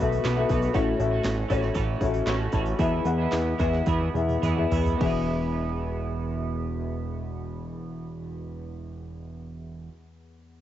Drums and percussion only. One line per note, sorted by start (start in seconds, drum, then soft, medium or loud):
0.00 open hi-hat medium
0.12 open hi-hat soft
0.24 snare loud
0.24 clap medium
0.24 open hi-hat loud
0.49 kick loud
0.49 open hi-hat medium
0.62 open hi-hat medium
0.74 kick loud
0.74 open hi-hat medium
1.00 open hi-hat medium
1.25 snare loud
1.25 clap medium
1.25 open hi-hat medium
1.50 kick medium
1.50 open hi-hat medium
1.63 snare soft
1.75 kick medium
1.75 open hi-hat loud
2.01 kick medium
2.01 open hi-hat medium
2.14 open hi-hat medium
2.26 snare loud
2.26 clap medium
2.26 open hi-hat medium
2.52 kick medium
2.52 open hi-hat medium
2.65 open hi-hat medium
2.79 kick loud
2.79 open hi-hat medium
3.05 open hi-hat medium
3.32 snare loud
3.32 clap medium
3.32 open hi-hat medium
3.59 kick medium
3.59 open hi-hat medium
3.73 snare soft
3.86 kick medium
3.86 open hi-hat medium
3.86 high tom medium
4.01 high tom medium
4.15 open hi-hat medium
4.15 mid tom medium
4.29 open hi-hat medium
4.29 mid tom medium
4.43 mid tom medium
4.43 open hi-hat medium
4.57 mid tom medium
4.71 floor tom loud
4.71 open hi-hat medium
4.86 floor tom loud
4.86 open hi-hat medium
5.01 kick loud
5.01 crash medium